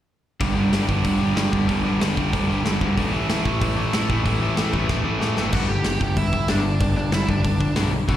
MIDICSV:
0, 0, Header, 1, 5, 480
1, 0, Start_track
1, 0, Tempo, 319829
1, 608, Time_signature, 4, 2, 24, 8
1, 12257, End_track
2, 0, Start_track
2, 0, Title_t, "Lead electric guitar"
2, 0, Program_c, 0, 29
2, 8302, Note_on_c, 0, 78, 80
2, 8308, Note_on_c, 0, 66, 66
2, 8522, Note_off_c, 0, 66, 0
2, 8528, Note_on_c, 0, 67, 68
2, 8534, Note_off_c, 0, 78, 0
2, 8535, Note_on_c, 0, 79, 67
2, 8979, Note_off_c, 0, 67, 0
2, 9012, Note_off_c, 0, 79, 0
2, 9033, Note_on_c, 0, 67, 69
2, 9041, Note_on_c, 0, 79, 87
2, 9248, Note_off_c, 0, 67, 0
2, 9260, Note_off_c, 0, 79, 0
2, 9266, Note_on_c, 0, 76, 85
2, 9274, Note_on_c, 0, 64, 58
2, 9707, Note_off_c, 0, 64, 0
2, 9707, Note_off_c, 0, 76, 0
2, 9735, Note_on_c, 0, 62, 59
2, 9744, Note_on_c, 0, 74, 61
2, 10182, Note_off_c, 0, 62, 0
2, 10211, Note_off_c, 0, 74, 0
2, 10219, Note_on_c, 0, 62, 64
2, 10229, Note_on_c, 0, 74, 82
2, 10439, Note_off_c, 0, 62, 0
2, 10447, Note_off_c, 0, 74, 0
2, 10457, Note_on_c, 0, 62, 63
2, 10465, Note_on_c, 0, 74, 80
2, 10677, Note_off_c, 0, 62, 0
2, 10703, Note_on_c, 0, 64, 58
2, 10715, Note_off_c, 0, 74, 0
2, 10715, Note_on_c, 0, 76, 77
2, 10920, Note_off_c, 0, 64, 0
2, 10947, Note_on_c, 0, 62, 73
2, 10950, Note_off_c, 0, 76, 0
2, 10959, Note_on_c, 0, 74, 84
2, 11837, Note_off_c, 0, 62, 0
2, 11843, Note_off_c, 0, 74, 0
2, 12146, Note_on_c, 0, 66, 74
2, 12164, Note_on_c, 0, 78, 94
2, 12257, Note_off_c, 0, 66, 0
2, 12257, Note_off_c, 0, 78, 0
2, 12257, End_track
3, 0, Start_track
3, 0, Title_t, "Overdriven electric guitar"
3, 0, Program_c, 1, 29
3, 601, Note_on_c, 1, 43, 77
3, 613, Note_on_c, 1, 50, 99
3, 614, Note_on_c, 1, 55, 94
3, 820, Note_off_c, 1, 50, 0
3, 824, Note_off_c, 1, 55, 0
3, 830, Note_on_c, 1, 55, 97
3, 838, Note_on_c, 1, 50, 81
3, 839, Note_off_c, 1, 43, 0
3, 845, Note_on_c, 1, 43, 74
3, 1074, Note_off_c, 1, 43, 0
3, 1074, Note_off_c, 1, 50, 0
3, 1080, Note_on_c, 1, 43, 81
3, 1091, Note_off_c, 1, 55, 0
3, 1092, Note_on_c, 1, 50, 81
3, 1097, Note_on_c, 1, 55, 92
3, 1315, Note_off_c, 1, 50, 0
3, 1317, Note_off_c, 1, 55, 0
3, 1323, Note_on_c, 1, 55, 88
3, 1332, Note_off_c, 1, 43, 0
3, 1333, Note_on_c, 1, 50, 73
3, 1338, Note_on_c, 1, 43, 68
3, 1544, Note_off_c, 1, 50, 0
3, 1545, Note_off_c, 1, 43, 0
3, 1555, Note_off_c, 1, 55, 0
3, 1562, Note_on_c, 1, 50, 77
3, 1563, Note_on_c, 1, 43, 78
3, 1573, Note_on_c, 1, 55, 86
3, 1781, Note_off_c, 1, 55, 0
3, 1782, Note_off_c, 1, 43, 0
3, 1782, Note_off_c, 1, 50, 0
3, 1799, Note_on_c, 1, 55, 91
3, 1800, Note_on_c, 1, 43, 62
3, 1800, Note_on_c, 1, 50, 76
3, 2014, Note_off_c, 1, 43, 0
3, 2021, Note_off_c, 1, 50, 0
3, 2025, Note_off_c, 1, 55, 0
3, 2032, Note_on_c, 1, 43, 75
3, 2039, Note_on_c, 1, 50, 81
3, 2043, Note_on_c, 1, 55, 95
3, 2259, Note_off_c, 1, 55, 0
3, 2265, Note_off_c, 1, 50, 0
3, 2268, Note_off_c, 1, 43, 0
3, 2277, Note_on_c, 1, 55, 77
3, 2283, Note_on_c, 1, 50, 76
3, 2286, Note_on_c, 1, 43, 63
3, 2495, Note_off_c, 1, 43, 0
3, 2497, Note_off_c, 1, 50, 0
3, 2509, Note_off_c, 1, 55, 0
3, 2513, Note_on_c, 1, 43, 93
3, 2515, Note_on_c, 1, 50, 99
3, 2528, Note_on_c, 1, 55, 103
3, 2740, Note_off_c, 1, 55, 0
3, 2749, Note_off_c, 1, 50, 0
3, 2756, Note_off_c, 1, 43, 0
3, 2758, Note_on_c, 1, 55, 84
3, 2767, Note_on_c, 1, 50, 78
3, 2774, Note_on_c, 1, 43, 76
3, 2990, Note_off_c, 1, 43, 0
3, 2996, Note_off_c, 1, 50, 0
3, 3006, Note_off_c, 1, 55, 0
3, 3008, Note_on_c, 1, 43, 79
3, 3014, Note_on_c, 1, 50, 81
3, 3024, Note_on_c, 1, 55, 87
3, 3237, Note_off_c, 1, 55, 0
3, 3248, Note_off_c, 1, 50, 0
3, 3251, Note_off_c, 1, 43, 0
3, 3255, Note_on_c, 1, 55, 83
3, 3266, Note_on_c, 1, 50, 81
3, 3269, Note_on_c, 1, 43, 71
3, 3477, Note_off_c, 1, 43, 0
3, 3479, Note_off_c, 1, 50, 0
3, 3485, Note_off_c, 1, 55, 0
3, 3495, Note_on_c, 1, 43, 72
3, 3497, Note_on_c, 1, 50, 77
3, 3503, Note_on_c, 1, 55, 77
3, 3717, Note_off_c, 1, 55, 0
3, 3720, Note_off_c, 1, 50, 0
3, 3724, Note_off_c, 1, 43, 0
3, 3735, Note_on_c, 1, 55, 92
3, 3738, Note_on_c, 1, 50, 72
3, 3742, Note_on_c, 1, 43, 65
3, 3953, Note_off_c, 1, 43, 0
3, 3958, Note_off_c, 1, 50, 0
3, 3963, Note_off_c, 1, 55, 0
3, 3971, Note_on_c, 1, 43, 70
3, 3976, Note_on_c, 1, 50, 82
3, 3981, Note_on_c, 1, 55, 75
3, 4198, Note_off_c, 1, 55, 0
3, 4206, Note_off_c, 1, 50, 0
3, 4213, Note_off_c, 1, 43, 0
3, 4217, Note_on_c, 1, 55, 83
3, 4224, Note_on_c, 1, 50, 85
3, 4231, Note_on_c, 1, 43, 75
3, 4443, Note_off_c, 1, 55, 0
3, 4446, Note_off_c, 1, 50, 0
3, 4450, Note_off_c, 1, 43, 0
3, 4456, Note_on_c, 1, 45, 91
3, 4458, Note_on_c, 1, 52, 91
3, 4469, Note_on_c, 1, 57, 91
3, 4699, Note_off_c, 1, 57, 0
3, 4701, Note_off_c, 1, 52, 0
3, 4705, Note_on_c, 1, 57, 92
3, 4707, Note_on_c, 1, 52, 84
3, 4713, Note_off_c, 1, 45, 0
3, 4719, Note_on_c, 1, 45, 75
3, 4929, Note_off_c, 1, 45, 0
3, 4935, Note_off_c, 1, 52, 0
3, 4935, Note_on_c, 1, 45, 86
3, 4941, Note_on_c, 1, 52, 88
3, 4942, Note_off_c, 1, 57, 0
3, 4948, Note_on_c, 1, 57, 94
3, 5167, Note_off_c, 1, 57, 0
3, 5169, Note_off_c, 1, 52, 0
3, 5173, Note_on_c, 1, 57, 93
3, 5175, Note_off_c, 1, 45, 0
3, 5175, Note_on_c, 1, 52, 86
3, 5181, Note_on_c, 1, 45, 69
3, 5394, Note_off_c, 1, 45, 0
3, 5399, Note_off_c, 1, 52, 0
3, 5409, Note_off_c, 1, 57, 0
3, 5412, Note_on_c, 1, 45, 81
3, 5417, Note_on_c, 1, 52, 92
3, 5427, Note_on_c, 1, 57, 97
3, 5635, Note_off_c, 1, 57, 0
3, 5637, Note_off_c, 1, 52, 0
3, 5649, Note_off_c, 1, 45, 0
3, 5653, Note_on_c, 1, 57, 92
3, 5655, Note_on_c, 1, 52, 90
3, 5667, Note_on_c, 1, 45, 67
3, 5876, Note_off_c, 1, 45, 0
3, 5878, Note_off_c, 1, 52, 0
3, 5888, Note_off_c, 1, 57, 0
3, 5894, Note_on_c, 1, 45, 70
3, 5897, Note_on_c, 1, 52, 77
3, 5906, Note_on_c, 1, 57, 82
3, 6132, Note_off_c, 1, 57, 0
3, 6136, Note_off_c, 1, 52, 0
3, 6143, Note_off_c, 1, 45, 0
3, 6150, Note_on_c, 1, 57, 90
3, 6154, Note_on_c, 1, 52, 86
3, 6161, Note_on_c, 1, 45, 72
3, 6376, Note_off_c, 1, 45, 0
3, 6378, Note_off_c, 1, 52, 0
3, 6386, Note_off_c, 1, 57, 0
3, 6394, Note_on_c, 1, 45, 93
3, 6396, Note_on_c, 1, 52, 89
3, 6404, Note_on_c, 1, 57, 105
3, 6607, Note_off_c, 1, 57, 0
3, 6618, Note_off_c, 1, 52, 0
3, 6625, Note_on_c, 1, 57, 93
3, 6626, Note_off_c, 1, 45, 0
3, 6636, Note_on_c, 1, 52, 80
3, 6644, Note_on_c, 1, 45, 83
3, 6848, Note_off_c, 1, 45, 0
3, 6850, Note_off_c, 1, 52, 0
3, 6855, Note_off_c, 1, 57, 0
3, 6866, Note_on_c, 1, 45, 86
3, 6868, Note_on_c, 1, 52, 89
3, 6873, Note_on_c, 1, 57, 87
3, 7077, Note_off_c, 1, 57, 0
3, 7086, Note_off_c, 1, 52, 0
3, 7092, Note_off_c, 1, 45, 0
3, 7095, Note_on_c, 1, 57, 87
3, 7104, Note_on_c, 1, 52, 78
3, 7110, Note_on_c, 1, 45, 72
3, 7322, Note_off_c, 1, 45, 0
3, 7325, Note_off_c, 1, 52, 0
3, 7330, Note_off_c, 1, 57, 0
3, 7340, Note_on_c, 1, 45, 80
3, 7343, Note_on_c, 1, 52, 84
3, 7348, Note_on_c, 1, 57, 84
3, 7549, Note_off_c, 1, 57, 0
3, 7555, Note_off_c, 1, 52, 0
3, 7559, Note_off_c, 1, 45, 0
3, 7567, Note_on_c, 1, 57, 80
3, 7573, Note_on_c, 1, 52, 72
3, 7577, Note_on_c, 1, 45, 72
3, 7786, Note_off_c, 1, 45, 0
3, 7788, Note_off_c, 1, 52, 0
3, 7797, Note_off_c, 1, 57, 0
3, 7804, Note_on_c, 1, 45, 76
3, 7806, Note_on_c, 1, 52, 86
3, 7815, Note_on_c, 1, 57, 84
3, 8025, Note_off_c, 1, 57, 0
3, 8035, Note_off_c, 1, 52, 0
3, 8043, Note_on_c, 1, 57, 86
3, 8046, Note_off_c, 1, 45, 0
3, 8053, Note_on_c, 1, 52, 69
3, 8064, Note_on_c, 1, 45, 65
3, 8276, Note_off_c, 1, 57, 0
3, 8280, Note_off_c, 1, 52, 0
3, 8286, Note_off_c, 1, 45, 0
3, 8291, Note_on_c, 1, 43, 85
3, 8297, Note_on_c, 1, 50, 96
3, 8306, Note_on_c, 1, 55, 103
3, 8513, Note_off_c, 1, 43, 0
3, 8523, Note_off_c, 1, 50, 0
3, 8527, Note_off_c, 1, 55, 0
3, 8531, Note_on_c, 1, 43, 72
3, 8543, Note_on_c, 1, 50, 84
3, 8744, Note_off_c, 1, 43, 0
3, 8755, Note_off_c, 1, 50, 0
3, 8762, Note_on_c, 1, 43, 65
3, 8772, Note_on_c, 1, 50, 80
3, 8985, Note_off_c, 1, 43, 0
3, 8990, Note_off_c, 1, 50, 0
3, 9004, Note_on_c, 1, 43, 69
3, 9016, Note_on_c, 1, 50, 75
3, 9225, Note_off_c, 1, 43, 0
3, 9231, Note_off_c, 1, 50, 0
3, 9252, Note_on_c, 1, 43, 71
3, 9259, Note_on_c, 1, 50, 67
3, 9469, Note_off_c, 1, 43, 0
3, 9473, Note_off_c, 1, 50, 0
3, 9497, Note_on_c, 1, 43, 66
3, 9499, Note_on_c, 1, 50, 77
3, 9711, Note_off_c, 1, 43, 0
3, 9712, Note_off_c, 1, 50, 0
3, 9732, Note_on_c, 1, 43, 88
3, 9737, Note_on_c, 1, 50, 94
3, 9741, Note_on_c, 1, 55, 95
3, 9958, Note_off_c, 1, 43, 0
3, 9961, Note_off_c, 1, 50, 0
3, 9963, Note_off_c, 1, 55, 0
3, 9976, Note_on_c, 1, 43, 67
3, 9980, Note_on_c, 1, 50, 74
3, 10190, Note_off_c, 1, 43, 0
3, 10192, Note_off_c, 1, 50, 0
3, 10211, Note_on_c, 1, 43, 81
3, 10220, Note_on_c, 1, 50, 86
3, 10427, Note_off_c, 1, 43, 0
3, 10432, Note_off_c, 1, 50, 0
3, 10454, Note_on_c, 1, 43, 78
3, 10455, Note_on_c, 1, 50, 89
3, 10662, Note_off_c, 1, 43, 0
3, 10669, Note_off_c, 1, 50, 0
3, 10680, Note_on_c, 1, 43, 73
3, 10688, Note_on_c, 1, 50, 84
3, 10902, Note_off_c, 1, 43, 0
3, 10905, Note_off_c, 1, 50, 0
3, 10932, Note_on_c, 1, 43, 71
3, 10940, Note_on_c, 1, 50, 83
3, 11147, Note_off_c, 1, 43, 0
3, 11151, Note_off_c, 1, 50, 0
3, 11168, Note_on_c, 1, 43, 64
3, 11174, Note_on_c, 1, 50, 72
3, 11384, Note_off_c, 1, 43, 0
3, 11388, Note_off_c, 1, 50, 0
3, 11410, Note_on_c, 1, 43, 65
3, 11418, Note_on_c, 1, 50, 71
3, 11625, Note_off_c, 1, 43, 0
3, 11629, Note_off_c, 1, 50, 0
3, 11648, Note_on_c, 1, 43, 82
3, 11656, Note_on_c, 1, 50, 86
3, 11660, Note_on_c, 1, 55, 92
3, 11873, Note_off_c, 1, 43, 0
3, 11877, Note_off_c, 1, 50, 0
3, 11879, Note_off_c, 1, 55, 0
3, 11895, Note_on_c, 1, 43, 74
3, 11898, Note_on_c, 1, 50, 78
3, 12107, Note_off_c, 1, 43, 0
3, 12109, Note_off_c, 1, 50, 0
3, 12121, Note_on_c, 1, 45, 89
3, 12130, Note_on_c, 1, 57, 94
3, 12132, Note_on_c, 1, 52, 97
3, 12257, Note_off_c, 1, 45, 0
3, 12257, Note_off_c, 1, 52, 0
3, 12257, Note_off_c, 1, 57, 0
3, 12257, End_track
4, 0, Start_track
4, 0, Title_t, "Picked electric bass"
4, 0, Program_c, 2, 34
4, 611, Note_on_c, 2, 31, 86
4, 816, Note_off_c, 2, 31, 0
4, 848, Note_on_c, 2, 31, 76
4, 1054, Note_off_c, 2, 31, 0
4, 1094, Note_on_c, 2, 31, 79
4, 1298, Note_off_c, 2, 31, 0
4, 1328, Note_on_c, 2, 31, 78
4, 1535, Note_off_c, 2, 31, 0
4, 1572, Note_on_c, 2, 31, 74
4, 1984, Note_off_c, 2, 31, 0
4, 2046, Note_on_c, 2, 43, 79
4, 2255, Note_off_c, 2, 43, 0
4, 2296, Note_on_c, 2, 31, 80
4, 2501, Note_off_c, 2, 31, 0
4, 2538, Note_on_c, 2, 31, 86
4, 2742, Note_off_c, 2, 31, 0
4, 2782, Note_on_c, 2, 31, 82
4, 2985, Note_off_c, 2, 31, 0
4, 3020, Note_on_c, 2, 31, 83
4, 3224, Note_off_c, 2, 31, 0
4, 3264, Note_on_c, 2, 31, 82
4, 3466, Note_off_c, 2, 31, 0
4, 3502, Note_on_c, 2, 38, 83
4, 3706, Note_off_c, 2, 38, 0
4, 3733, Note_on_c, 2, 31, 80
4, 3940, Note_off_c, 2, 31, 0
4, 3968, Note_on_c, 2, 31, 78
4, 4178, Note_off_c, 2, 31, 0
4, 4219, Note_on_c, 2, 38, 76
4, 4424, Note_off_c, 2, 38, 0
4, 4463, Note_on_c, 2, 33, 82
4, 4666, Note_off_c, 2, 33, 0
4, 4698, Note_on_c, 2, 33, 86
4, 4904, Note_off_c, 2, 33, 0
4, 4945, Note_on_c, 2, 33, 84
4, 5148, Note_off_c, 2, 33, 0
4, 5179, Note_on_c, 2, 33, 82
4, 5385, Note_off_c, 2, 33, 0
4, 5423, Note_on_c, 2, 33, 76
4, 5833, Note_off_c, 2, 33, 0
4, 5905, Note_on_c, 2, 45, 85
4, 6108, Note_off_c, 2, 45, 0
4, 6147, Note_on_c, 2, 33, 80
4, 6349, Note_off_c, 2, 33, 0
4, 6385, Note_on_c, 2, 33, 87
4, 6588, Note_off_c, 2, 33, 0
4, 6614, Note_on_c, 2, 33, 91
4, 6822, Note_off_c, 2, 33, 0
4, 6862, Note_on_c, 2, 33, 85
4, 7066, Note_off_c, 2, 33, 0
4, 7108, Note_on_c, 2, 33, 83
4, 7310, Note_off_c, 2, 33, 0
4, 7343, Note_on_c, 2, 28, 76
4, 7546, Note_off_c, 2, 28, 0
4, 7574, Note_on_c, 2, 33, 83
4, 7782, Note_off_c, 2, 33, 0
4, 7807, Note_on_c, 2, 33, 85
4, 8017, Note_off_c, 2, 33, 0
4, 8062, Note_on_c, 2, 30, 82
4, 8266, Note_off_c, 2, 30, 0
4, 8297, Note_on_c, 2, 31, 92
4, 8468, Note_off_c, 2, 31, 0
4, 8535, Note_on_c, 2, 31, 82
4, 8706, Note_off_c, 2, 31, 0
4, 8782, Note_on_c, 2, 31, 87
4, 8951, Note_off_c, 2, 31, 0
4, 9015, Note_on_c, 2, 31, 84
4, 9186, Note_off_c, 2, 31, 0
4, 9256, Note_on_c, 2, 31, 87
4, 9597, Note_off_c, 2, 31, 0
4, 9730, Note_on_c, 2, 31, 91
4, 10073, Note_off_c, 2, 31, 0
4, 10213, Note_on_c, 2, 31, 88
4, 10383, Note_off_c, 2, 31, 0
4, 10451, Note_on_c, 2, 31, 86
4, 10622, Note_off_c, 2, 31, 0
4, 10688, Note_on_c, 2, 31, 87
4, 10860, Note_off_c, 2, 31, 0
4, 10932, Note_on_c, 2, 31, 82
4, 11102, Note_off_c, 2, 31, 0
4, 11168, Note_on_c, 2, 31, 81
4, 11510, Note_off_c, 2, 31, 0
4, 11639, Note_on_c, 2, 35, 83
4, 11984, Note_off_c, 2, 35, 0
4, 12132, Note_on_c, 2, 33, 95
4, 12257, Note_off_c, 2, 33, 0
4, 12257, End_track
5, 0, Start_track
5, 0, Title_t, "Drums"
5, 610, Note_on_c, 9, 36, 107
5, 610, Note_on_c, 9, 46, 49
5, 760, Note_off_c, 9, 36, 0
5, 760, Note_off_c, 9, 46, 0
5, 1094, Note_on_c, 9, 38, 93
5, 1094, Note_on_c, 9, 46, 53
5, 1244, Note_off_c, 9, 38, 0
5, 1244, Note_off_c, 9, 46, 0
5, 1332, Note_on_c, 9, 36, 69
5, 1482, Note_off_c, 9, 36, 0
5, 1572, Note_on_c, 9, 36, 94
5, 1572, Note_on_c, 9, 46, 57
5, 1722, Note_off_c, 9, 36, 0
5, 1722, Note_off_c, 9, 46, 0
5, 2056, Note_on_c, 9, 38, 106
5, 2056, Note_on_c, 9, 46, 50
5, 2206, Note_off_c, 9, 38, 0
5, 2206, Note_off_c, 9, 46, 0
5, 2296, Note_on_c, 9, 36, 84
5, 2446, Note_off_c, 9, 36, 0
5, 2536, Note_on_c, 9, 36, 88
5, 2538, Note_on_c, 9, 46, 52
5, 2686, Note_off_c, 9, 36, 0
5, 2688, Note_off_c, 9, 46, 0
5, 3023, Note_on_c, 9, 38, 102
5, 3023, Note_on_c, 9, 46, 51
5, 3173, Note_off_c, 9, 38, 0
5, 3173, Note_off_c, 9, 46, 0
5, 3261, Note_on_c, 9, 36, 83
5, 3411, Note_off_c, 9, 36, 0
5, 3503, Note_on_c, 9, 36, 92
5, 3511, Note_on_c, 9, 46, 52
5, 3653, Note_off_c, 9, 36, 0
5, 3661, Note_off_c, 9, 46, 0
5, 3987, Note_on_c, 9, 38, 104
5, 3987, Note_on_c, 9, 46, 50
5, 4137, Note_off_c, 9, 38, 0
5, 4137, Note_off_c, 9, 46, 0
5, 4222, Note_on_c, 9, 36, 85
5, 4372, Note_off_c, 9, 36, 0
5, 4465, Note_on_c, 9, 36, 84
5, 4469, Note_on_c, 9, 46, 48
5, 4615, Note_off_c, 9, 36, 0
5, 4619, Note_off_c, 9, 46, 0
5, 4947, Note_on_c, 9, 38, 110
5, 4947, Note_on_c, 9, 46, 50
5, 5097, Note_off_c, 9, 38, 0
5, 5097, Note_off_c, 9, 46, 0
5, 5185, Note_on_c, 9, 36, 81
5, 5335, Note_off_c, 9, 36, 0
5, 5426, Note_on_c, 9, 36, 100
5, 5427, Note_on_c, 9, 46, 57
5, 5576, Note_off_c, 9, 36, 0
5, 5577, Note_off_c, 9, 46, 0
5, 5904, Note_on_c, 9, 38, 109
5, 5904, Note_on_c, 9, 46, 55
5, 6054, Note_off_c, 9, 38, 0
5, 6054, Note_off_c, 9, 46, 0
5, 6148, Note_on_c, 9, 36, 85
5, 6298, Note_off_c, 9, 36, 0
5, 6387, Note_on_c, 9, 46, 52
5, 6388, Note_on_c, 9, 36, 90
5, 6537, Note_off_c, 9, 46, 0
5, 6538, Note_off_c, 9, 36, 0
5, 6863, Note_on_c, 9, 38, 110
5, 6863, Note_on_c, 9, 46, 50
5, 7013, Note_off_c, 9, 38, 0
5, 7013, Note_off_c, 9, 46, 0
5, 7106, Note_on_c, 9, 36, 76
5, 7256, Note_off_c, 9, 36, 0
5, 7345, Note_on_c, 9, 38, 62
5, 7346, Note_on_c, 9, 36, 94
5, 7495, Note_off_c, 9, 38, 0
5, 7496, Note_off_c, 9, 36, 0
5, 7825, Note_on_c, 9, 38, 76
5, 7975, Note_off_c, 9, 38, 0
5, 8058, Note_on_c, 9, 38, 84
5, 8208, Note_off_c, 9, 38, 0
5, 8292, Note_on_c, 9, 49, 113
5, 8300, Note_on_c, 9, 36, 94
5, 8442, Note_off_c, 9, 49, 0
5, 8450, Note_off_c, 9, 36, 0
5, 8772, Note_on_c, 9, 38, 105
5, 8772, Note_on_c, 9, 46, 56
5, 8922, Note_off_c, 9, 38, 0
5, 8922, Note_off_c, 9, 46, 0
5, 9017, Note_on_c, 9, 36, 80
5, 9167, Note_off_c, 9, 36, 0
5, 9255, Note_on_c, 9, 46, 62
5, 9257, Note_on_c, 9, 36, 95
5, 9405, Note_off_c, 9, 46, 0
5, 9407, Note_off_c, 9, 36, 0
5, 9498, Note_on_c, 9, 36, 85
5, 9648, Note_off_c, 9, 36, 0
5, 9730, Note_on_c, 9, 38, 111
5, 9730, Note_on_c, 9, 46, 55
5, 9880, Note_off_c, 9, 38, 0
5, 9880, Note_off_c, 9, 46, 0
5, 10205, Note_on_c, 9, 46, 58
5, 10214, Note_on_c, 9, 36, 115
5, 10355, Note_off_c, 9, 46, 0
5, 10364, Note_off_c, 9, 36, 0
5, 10691, Note_on_c, 9, 38, 105
5, 10691, Note_on_c, 9, 46, 54
5, 10841, Note_off_c, 9, 38, 0
5, 10841, Note_off_c, 9, 46, 0
5, 10935, Note_on_c, 9, 36, 79
5, 11085, Note_off_c, 9, 36, 0
5, 11168, Note_on_c, 9, 46, 61
5, 11174, Note_on_c, 9, 36, 106
5, 11318, Note_off_c, 9, 46, 0
5, 11324, Note_off_c, 9, 36, 0
5, 11413, Note_on_c, 9, 36, 78
5, 11564, Note_off_c, 9, 36, 0
5, 11647, Note_on_c, 9, 38, 103
5, 11647, Note_on_c, 9, 46, 57
5, 11797, Note_off_c, 9, 38, 0
5, 11797, Note_off_c, 9, 46, 0
5, 12134, Note_on_c, 9, 46, 53
5, 12136, Note_on_c, 9, 36, 101
5, 12257, Note_off_c, 9, 36, 0
5, 12257, Note_off_c, 9, 46, 0
5, 12257, End_track
0, 0, End_of_file